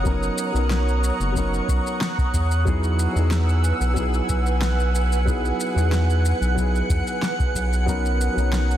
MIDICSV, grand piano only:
0, 0, Header, 1, 2, 480
1, 0, Start_track
1, 0, Tempo, 652174
1, 37, Time_signature, 4, 2, 24, 8
1, 6455, End_track
2, 0, Start_track
2, 0, Title_t, "Grand piano"
2, 0, Program_c, 0, 0
2, 0, Control_c, 0, 64, 127
2, 0, Note_on_c, 0, 54, 72
2, 0, Note_on_c, 0, 59, 67
2, 0, Note_on_c, 0, 61, 71
2, 0, Note_on_c, 0, 63, 72
2, 0, Note_on_c, 0, 70, 83
2, 27, Note_off_c, 0, 54, 0
2, 27, Note_on_c, 0, 54, 83
2, 32, Note_off_c, 0, 59, 0
2, 32, Note_on_c, 0, 59, 80
2, 37, Note_off_c, 0, 61, 0
2, 37, Note_on_c, 0, 61, 81
2, 44, Note_off_c, 0, 63, 0
2, 44, Note_on_c, 0, 63, 83
2, 47, Note_off_c, 0, 70, 0
2, 47, Note_on_c, 0, 70, 97
2, 367, Note_off_c, 0, 54, 0
2, 370, Note_off_c, 0, 59, 0
2, 373, Note_off_c, 0, 61, 0
2, 376, Note_off_c, 0, 63, 0
2, 378, Note_off_c, 0, 70, 0
2, 384, Note_on_c, 0, 54, 75
2, 395, Note_on_c, 0, 59, 64
2, 406, Note_on_c, 0, 61, 69
2, 420, Note_on_c, 0, 63, 65
2, 430, Note_on_c, 0, 70, 81
2, 960, Note_off_c, 0, 54, 0
2, 966, Note_off_c, 0, 59, 0
2, 971, Note_off_c, 0, 61, 0
2, 973, Note_on_c, 0, 54, 78
2, 978, Note_off_c, 0, 63, 0
2, 983, Note_off_c, 0, 70, 0
2, 984, Note_on_c, 0, 59, 76
2, 996, Note_on_c, 0, 61, 72
2, 1008, Note_on_c, 0, 63, 73
2, 1018, Note_on_c, 0, 70, 84
2, 1691, Note_off_c, 0, 54, 0
2, 1697, Note_off_c, 0, 59, 0
2, 1703, Note_off_c, 0, 61, 0
2, 1709, Note_off_c, 0, 63, 0
2, 1714, Note_off_c, 0, 70, 0
2, 1728, Control_c, 0, 64, 0
2, 1834, Control_c, 0, 64, 127
2, 1951, Note_on_c, 0, 54, 87
2, 1955, Note_on_c, 0, 59, 82
2, 1961, Note_on_c, 0, 63, 78
2, 1967, Note_on_c, 0, 64, 81
2, 1972, Note_on_c, 0, 68, 96
2, 2290, Note_off_c, 0, 54, 0
2, 2292, Note_off_c, 0, 59, 0
2, 2295, Note_off_c, 0, 63, 0
2, 2297, Note_off_c, 0, 64, 0
2, 2300, Note_off_c, 0, 68, 0
2, 2303, Note_on_c, 0, 54, 69
2, 2316, Note_on_c, 0, 59, 62
2, 2325, Note_on_c, 0, 63, 65
2, 2336, Note_on_c, 0, 64, 64
2, 2348, Note_on_c, 0, 68, 82
2, 2880, Note_off_c, 0, 54, 0
2, 2886, Note_off_c, 0, 59, 0
2, 2891, Note_off_c, 0, 63, 0
2, 2896, Note_off_c, 0, 64, 0
2, 2898, Note_on_c, 0, 54, 78
2, 2902, Note_off_c, 0, 68, 0
2, 2908, Note_on_c, 0, 59, 76
2, 2920, Note_on_c, 0, 63, 72
2, 2930, Note_on_c, 0, 64, 68
2, 2941, Note_on_c, 0, 68, 89
2, 3840, Note_off_c, 0, 54, 0
2, 3845, Note_off_c, 0, 59, 0
2, 3851, Note_off_c, 0, 63, 0
2, 3856, Note_off_c, 0, 64, 0
2, 3861, Note_off_c, 0, 68, 0
2, 3867, Note_on_c, 0, 54, 86
2, 3871, Note_on_c, 0, 59, 78
2, 3877, Note_on_c, 0, 63, 76
2, 3883, Note_on_c, 0, 64, 76
2, 3889, Note_on_c, 0, 68, 90
2, 4207, Note_off_c, 0, 54, 0
2, 4210, Note_off_c, 0, 59, 0
2, 4213, Note_off_c, 0, 63, 0
2, 4216, Note_off_c, 0, 64, 0
2, 4218, Note_off_c, 0, 68, 0
2, 4227, Note_on_c, 0, 54, 70
2, 4237, Note_on_c, 0, 59, 64
2, 4250, Note_on_c, 0, 63, 68
2, 4258, Note_on_c, 0, 64, 63
2, 4272, Note_on_c, 0, 68, 76
2, 4802, Note_off_c, 0, 54, 0
2, 4807, Note_off_c, 0, 59, 0
2, 4813, Note_off_c, 0, 63, 0
2, 4817, Note_off_c, 0, 64, 0
2, 4817, Note_on_c, 0, 54, 79
2, 4824, Note_off_c, 0, 68, 0
2, 4829, Note_on_c, 0, 59, 72
2, 4838, Note_on_c, 0, 63, 71
2, 4851, Note_on_c, 0, 64, 70
2, 4862, Note_on_c, 0, 68, 88
2, 5760, Note_off_c, 0, 54, 0
2, 5766, Note_off_c, 0, 59, 0
2, 5770, Note_off_c, 0, 63, 0
2, 5777, Note_off_c, 0, 64, 0
2, 5782, Note_off_c, 0, 68, 0
2, 5783, Note_on_c, 0, 54, 83
2, 5791, Note_on_c, 0, 59, 82
2, 5796, Note_on_c, 0, 61, 80
2, 5802, Note_on_c, 0, 63, 80
2, 5806, Control_c, 0, 64, 0
2, 5806, Note_on_c, 0, 70, 96
2, 5936, Control_c, 0, 64, 127
2, 6126, Note_off_c, 0, 54, 0
2, 6130, Note_off_c, 0, 59, 0
2, 6132, Note_off_c, 0, 61, 0
2, 6135, Note_off_c, 0, 63, 0
2, 6137, Note_off_c, 0, 70, 0
2, 6139, Note_on_c, 0, 54, 70
2, 6151, Note_on_c, 0, 59, 65
2, 6161, Note_on_c, 0, 61, 60
2, 6173, Note_on_c, 0, 63, 63
2, 6184, Note_on_c, 0, 70, 75
2, 6455, Note_off_c, 0, 54, 0
2, 6455, Note_off_c, 0, 59, 0
2, 6455, Note_off_c, 0, 61, 0
2, 6455, Note_off_c, 0, 63, 0
2, 6455, Note_off_c, 0, 70, 0
2, 6455, End_track
0, 0, End_of_file